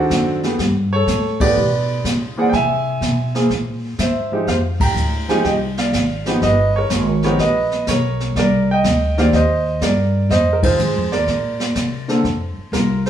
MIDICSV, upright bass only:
0, 0, Header, 1, 3, 480
1, 0, Start_track
1, 0, Tempo, 485830
1, 580, Time_signature, 4, 2, 24, 8
1, 12940, End_track
2, 0, Start_track
2, 0, Title_t, "Upright bass"
2, 0, Program_c, 0, 32
2, 98, Note_on_c, 0, 42, 68
2, 565, Note_off_c, 0, 42, 0
2, 578, Note_on_c, 0, 43, 81
2, 1045, Note_off_c, 0, 43, 0
2, 1056, Note_on_c, 0, 45, 87
2, 1524, Note_off_c, 0, 45, 0
2, 1542, Note_on_c, 0, 47, 80
2, 2007, Note_off_c, 0, 47, 0
2, 2018, Note_on_c, 0, 49, 81
2, 2485, Note_off_c, 0, 49, 0
2, 2497, Note_on_c, 0, 48, 74
2, 2965, Note_off_c, 0, 48, 0
2, 2973, Note_on_c, 0, 47, 81
2, 3443, Note_off_c, 0, 47, 0
2, 3450, Note_on_c, 0, 46, 72
2, 3921, Note_off_c, 0, 46, 0
2, 3935, Note_on_c, 0, 44, 74
2, 4404, Note_off_c, 0, 44, 0
2, 4415, Note_on_c, 0, 41, 78
2, 4880, Note_off_c, 0, 41, 0
2, 4886, Note_on_c, 0, 38, 82
2, 5359, Note_off_c, 0, 38, 0
2, 5375, Note_on_c, 0, 36, 71
2, 5843, Note_off_c, 0, 36, 0
2, 5853, Note_on_c, 0, 32, 80
2, 6322, Note_off_c, 0, 32, 0
2, 6334, Note_on_c, 0, 31, 75
2, 6802, Note_off_c, 0, 31, 0
2, 6814, Note_on_c, 0, 32, 88
2, 7282, Note_off_c, 0, 32, 0
2, 7292, Note_on_c, 0, 34, 68
2, 7761, Note_off_c, 0, 34, 0
2, 7772, Note_on_c, 0, 35, 78
2, 8241, Note_off_c, 0, 35, 0
2, 8252, Note_on_c, 0, 36, 78
2, 8721, Note_off_c, 0, 36, 0
2, 8734, Note_on_c, 0, 38, 83
2, 9201, Note_off_c, 0, 38, 0
2, 9214, Note_on_c, 0, 39, 81
2, 9681, Note_off_c, 0, 39, 0
2, 9694, Note_on_c, 0, 43, 77
2, 10161, Note_off_c, 0, 43, 0
2, 10171, Note_on_c, 0, 41, 84
2, 10639, Note_off_c, 0, 41, 0
2, 10660, Note_on_c, 0, 44, 89
2, 10816, Note_off_c, 0, 44, 0
2, 10816, Note_on_c, 0, 41, 52
2, 10967, Note_off_c, 0, 41, 0
2, 10973, Note_on_c, 0, 39, 58
2, 11123, Note_off_c, 0, 39, 0
2, 11131, Note_on_c, 0, 46, 72
2, 11599, Note_off_c, 0, 46, 0
2, 11610, Note_on_c, 0, 48, 68
2, 12078, Note_off_c, 0, 48, 0
2, 12087, Note_on_c, 0, 41, 74
2, 12392, Note_off_c, 0, 41, 0
2, 12566, Note_on_c, 0, 36, 85
2, 12940, Note_off_c, 0, 36, 0
2, 12940, End_track
3, 0, Start_track
3, 0, Title_t, "Muted upright bass strokes"
3, 12424, Note_on_c, 9, 29, 31
3, 12523, Note_off_c, 9, 29, 0
3, 12940, End_track
0, 0, End_of_file